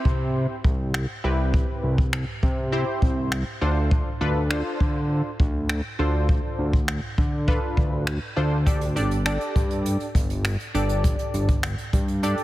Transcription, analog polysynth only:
0, 0, Header, 1, 2, 480
1, 0, Start_track
1, 0, Key_signature, 0, "major"
1, 0, Tempo, 594059
1, 1242, Time_signature, 4, 2, 24, 8
1, 10049, End_track
2, 0, Start_track
2, 0, Title_t, "Analog polysynth"
2, 0, Program_c, 0, 90
2, 0, Note_on_c, 0, 60, 85
2, 0, Note_on_c, 0, 64, 79
2, 0, Note_on_c, 0, 67, 83
2, 0, Note_on_c, 0, 72, 98
2, 448, Note_off_c, 0, 60, 0
2, 448, Note_off_c, 0, 64, 0
2, 449, Note_off_c, 0, 67, 0
2, 450, Note_off_c, 0, 72, 0
2, 1001, Note_on_c, 0, 60, 77
2, 1001, Note_on_c, 0, 64, 70
2, 1003, Note_on_c, 0, 67, 75
2, 1005, Note_on_c, 0, 71, 89
2, 1648, Note_off_c, 0, 60, 0
2, 1648, Note_off_c, 0, 64, 0
2, 1649, Note_off_c, 0, 67, 0
2, 1650, Note_off_c, 0, 71, 0
2, 2199, Note_on_c, 0, 60, 97
2, 2201, Note_on_c, 0, 64, 90
2, 2202, Note_on_c, 0, 67, 88
2, 2204, Note_on_c, 0, 72, 108
2, 2686, Note_off_c, 0, 60, 0
2, 2687, Note_off_c, 0, 64, 0
2, 2687, Note_off_c, 0, 67, 0
2, 2688, Note_off_c, 0, 72, 0
2, 2920, Note_on_c, 0, 62, 86
2, 2921, Note_on_c, 0, 65, 82
2, 2922, Note_on_c, 0, 69, 77
2, 2924, Note_on_c, 0, 72, 95
2, 3305, Note_off_c, 0, 62, 0
2, 3305, Note_off_c, 0, 65, 0
2, 3306, Note_off_c, 0, 69, 0
2, 3307, Note_off_c, 0, 72, 0
2, 3400, Note_on_c, 0, 62, 91
2, 3400, Note_on_c, 0, 65, 80
2, 3402, Note_on_c, 0, 69, 80
2, 3403, Note_on_c, 0, 71, 102
2, 3563, Note_off_c, 0, 62, 0
2, 3563, Note_off_c, 0, 65, 0
2, 3564, Note_off_c, 0, 69, 0
2, 3564, Note_off_c, 0, 71, 0
2, 3639, Note_on_c, 0, 62, 91
2, 3639, Note_on_c, 0, 65, 86
2, 3641, Note_on_c, 0, 69, 79
2, 3642, Note_on_c, 0, 72, 99
2, 4287, Note_off_c, 0, 62, 0
2, 4287, Note_off_c, 0, 65, 0
2, 4288, Note_off_c, 0, 69, 0
2, 4289, Note_off_c, 0, 72, 0
2, 4838, Note_on_c, 0, 62, 77
2, 4840, Note_on_c, 0, 65, 74
2, 4841, Note_on_c, 0, 69, 73
2, 4843, Note_on_c, 0, 72, 88
2, 5487, Note_off_c, 0, 62, 0
2, 5488, Note_off_c, 0, 65, 0
2, 5488, Note_off_c, 0, 69, 0
2, 5489, Note_off_c, 0, 72, 0
2, 6041, Note_on_c, 0, 62, 92
2, 6041, Note_on_c, 0, 65, 90
2, 6043, Note_on_c, 0, 69, 88
2, 6044, Note_on_c, 0, 71, 108
2, 6526, Note_off_c, 0, 62, 0
2, 6527, Note_off_c, 0, 65, 0
2, 6528, Note_off_c, 0, 69, 0
2, 6528, Note_off_c, 0, 71, 0
2, 6758, Note_on_c, 0, 62, 91
2, 6759, Note_on_c, 0, 65, 81
2, 6761, Note_on_c, 0, 69, 76
2, 6762, Note_on_c, 0, 72, 98
2, 6922, Note_off_c, 0, 62, 0
2, 6922, Note_off_c, 0, 65, 0
2, 6923, Note_off_c, 0, 69, 0
2, 6924, Note_off_c, 0, 72, 0
2, 6998, Note_on_c, 0, 62, 83
2, 7000, Note_on_c, 0, 67, 79
2, 7001, Note_on_c, 0, 69, 77
2, 7002, Note_on_c, 0, 74, 91
2, 7162, Note_off_c, 0, 62, 0
2, 7163, Note_off_c, 0, 67, 0
2, 7163, Note_off_c, 0, 69, 0
2, 7164, Note_off_c, 0, 74, 0
2, 7239, Note_on_c, 0, 62, 88
2, 7240, Note_on_c, 0, 67, 80
2, 7241, Note_on_c, 0, 69, 79
2, 7242, Note_on_c, 0, 74, 95
2, 7402, Note_off_c, 0, 62, 0
2, 7403, Note_off_c, 0, 67, 0
2, 7403, Note_off_c, 0, 69, 0
2, 7404, Note_off_c, 0, 74, 0
2, 7480, Note_on_c, 0, 62, 88
2, 7481, Note_on_c, 0, 67, 82
2, 7482, Note_on_c, 0, 69, 82
2, 7483, Note_on_c, 0, 74, 98
2, 8128, Note_off_c, 0, 62, 0
2, 8128, Note_off_c, 0, 67, 0
2, 8129, Note_off_c, 0, 69, 0
2, 8129, Note_off_c, 0, 74, 0
2, 8681, Note_on_c, 0, 62, 77
2, 8682, Note_on_c, 0, 67, 74
2, 8684, Note_on_c, 0, 69, 76
2, 8685, Note_on_c, 0, 74, 92
2, 9328, Note_off_c, 0, 62, 0
2, 9329, Note_off_c, 0, 67, 0
2, 9330, Note_off_c, 0, 69, 0
2, 9330, Note_off_c, 0, 74, 0
2, 9881, Note_on_c, 0, 62, 99
2, 9882, Note_on_c, 0, 67, 91
2, 9883, Note_on_c, 0, 69, 89
2, 9885, Note_on_c, 0, 74, 108
2, 10049, Note_off_c, 0, 62, 0
2, 10049, Note_off_c, 0, 67, 0
2, 10049, Note_off_c, 0, 69, 0
2, 10049, Note_off_c, 0, 74, 0
2, 10049, End_track
0, 0, End_of_file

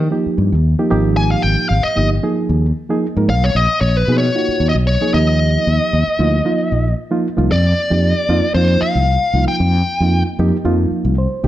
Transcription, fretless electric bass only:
0, 0, Header, 1, 3, 480
1, 0, Start_track
1, 0, Tempo, 525855
1, 1075, Time_signature, 4, 2, 24, 8
1, 10475, End_track
2, 0, Start_track
2, 0, Title_t, "Fretless electric bass"
2, 0, Program_c, 0, 35
2, 346, Note_on_c, 0, 43, 74
2, 453, Note_off_c, 0, 43, 0
2, 478, Note_on_c, 0, 39, 70
2, 675, Note_off_c, 0, 39, 0
2, 837, Note_on_c, 0, 32, 84
2, 1225, Note_off_c, 0, 32, 0
2, 1315, Note_on_c, 0, 32, 70
2, 1419, Note_off_c, 0, 32, 0
2, 1557, Note_on_c, 0, 32, 77
2, 1660, Note_off_c, 0, 32, 0
2, 1798, Note_on_c, 0, 31, 71
2, 1992, Note_off_c, 0, 31, 0
2, 2276, Note_on_c, 0, 39, 72
2, 2471, Note_off_c, 0, 39, 0
2, 2889, Note_on_c, 0, 44, 74
2, 2998, Note_on_c, 0, 35, 84
2, 3012, Note_off_c, 0, 44, 0
2, 3193, Note_off_c, 0, 35, 0
2, 3240, Note_on_c, 0, 34, 84
2, 3344, Note_off_c, 0, 34, 0
2, 3479, Note_on_c, 0, 34, 81
2, 3674, Note_off_c, 0, 34, 0
2, 3721, Note_on_c, 0, 47, 76
2, 3915, Note_off_c, 0, 47, 0
2, 4199, Note_on_c, 0, 39, 70
2, 4304, Note_off_c, 0, 39, 0
2, 4333, Note_on_c, 0, 35, 75
2, 4526, Note_off_c, 0, 35, 0
2, 4692, Note_on_c, 0, 39, 82
2, 5077, Note_off_c, 0, 39, 0
2, 5176, Note_on_c, 0, 39, 74
2, 5275, Note_off_c, 0, 39, 0
2, 5414, Note_on_c, 0, 39, 78
2, 5513, Note_off_c, 0, 39, 0
2, 5651, Note_on_c, 0, 38, 77
2, 5842, Note_off_c, 0, 38, 0
2, 6133, Note_on_c, 0, 34, 66
2, 6323, Note_off_c, 0, 34, 0
2, 6737, Note_on_c, 0, 36, 70
2, 6825, Note_off_c, 0, 36, 0
2, 6862, Note_on_c, 0, 41, 84
2, 7048, Note_off_c, 0, 41, 0
2, 7222, Note_on_c, 0, 41, 72
2, 7412, Note_off_c, 0, 41, 0
2, 7565, Note_on_c, 0, 41, 76
2, 7667, Note_off_c, 0, 41, 0
2, 7800, Note_on_c, 0, 41, 78
2, 7995, Note_off_c, 0, 41, 0
2, 8172, Note_on_c, 0, 36, 77
2, 8365, Note_off_c, 0, 36, 0
2, 8521, Note_on_c, 0, 36, 80
2, 8624, Note_off_c, 0, 36, 0
2, 8763, Note_on_c, 0, 41, 85
2, 8955, Note_off_c, 0, 41, 0
2, 9132, Note_on_c, 0, 41, 78
2, 9324, Note_off_c, 0, 41, 0
2, 9483, Note_on_c, 0, 41, 82
2, 9585, Note_off_c, 0, 41, 0
2, 9720, Note_on_c, 0, 41, 77
2, 9913, Note_off_c, 0, 41, 0
2, 10083, Note_on_c, 0, 36, 78
2, 10278, Note_off_c, 0, 36, 0
2, 10441, Note_on_c, 0, 36, 84
2, 10475, Note_off_c, 0, 36, 0
2, 10475, End_track
3, 0, Start_track
3, 0, Title_t, "Muted fretless electric bass strokes"
3, 239, Note_on_c, 9, 29, 30
3, 331, Note_off_c, 9, 29, 0
3, 4092, Note_on_c, 9, 29, 32
3, 4184, Note_off_c, 9, 29, 0
3, 5546, Note_on_c, 9, 29, 31
3, 5637, Note_off_c, 9, 29, 0
3, 8050, Note_on_c, 9, 29, 34
3, 8141, Note_off_c, 9, 29, 0
3, 8652, Note_on_c, 9, 29, 32
3, 8743, Note_off_c, 9, 29, 0
3, 9959, Note_on_c, 9, 29, 33
3, 10050, Note_off_c, 9, 29, 0
3, 10475, End_track
0, 0, End_of_file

